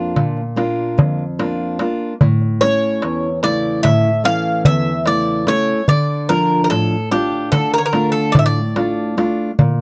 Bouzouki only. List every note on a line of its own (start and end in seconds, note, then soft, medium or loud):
0.00 1.34 A5 medium
2.61 3.39 C#5 medium
3.44 3.82 D5 medium
3.83 4.22 E5 loud
4.25 4.64 F5 loud
4.66 5.04 E5 loud
5.07 5.46 D5 loud
5.48 5.88 C#5 loud
5.89 6.27 D5 medium
6.29 6.61 A#4 medium
6.64 6.69 A#4 medium
6.70 7.09 A4 medium
7.12 7.51 G4 medium
7.52 7.73 A4 medium
7.74 7.80 A#4 medium
7.78 7.86 C#5 medium
7.86 8.11 A#4 medium
8.12 8.32 A4 medium
8.32 8.38 D5 medium
8.39 8.45 E5 medium
8.46 9.53 D5 medium